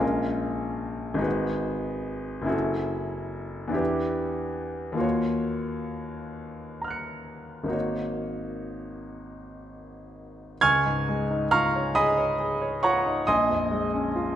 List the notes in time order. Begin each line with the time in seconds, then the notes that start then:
Already playing: A#1 G#3 C#4
0.00 F4 A#4
1.14 G#1 G#3
1.18 D#4 F#4 B4
2.42 F#1 C#4
2.46 E4 F#4
2.50 A4
3.68 E2 D4
3.72 E4 G4 B4
4.92 D#2 A#3
4.97 F4 F#4 C#5
6.82 A#5 F6
6.88 F#6 C#7
7.64 G#1 A#3
7.68 D#4 F#4 C#5
10.61 C#2 G#5 C#6 F6 G#6
10.86 G#2
11.09 G#3
11.31 D#4
11.51 F4 F5 A#5 C#6 F6
11.76 C#5
11.95 G#4 D#5 G#5 B5 D#6
12.18 C#5
12.40 G#4
12.62 C#5
12.83 F4 C#5 F#5 A#5 C#6
13.06 D#4
13.27 A#1 D#5 G#5 C6 D#6
13.50 F2
13.71 G#3
13.94 C#4
14.16 F4